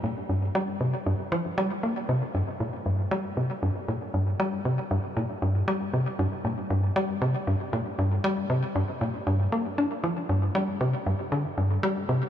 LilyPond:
\new Staff \with { instrumentName = "Analog synth bass" } { \clef bass \time 4/4 \key g \minor \tempo 4 = 117 bes,8 g,8 g8 c8 g,8 f8 g8 bes8 | c8 g,8 bes,8 g,8 g8 c8 g,8 bes,8 | g,8 g8 c8 g,8 bes,8 g,8 g8 c8 | g,8 bes,8 g,8 g8 c8 g,8 bes,8 g,8 |
g8 c8 g,8 bes,8 g,8 bes8 d'8 f8 | g,8 g8 c8 g,8 d8 g,8 g8 c8 | }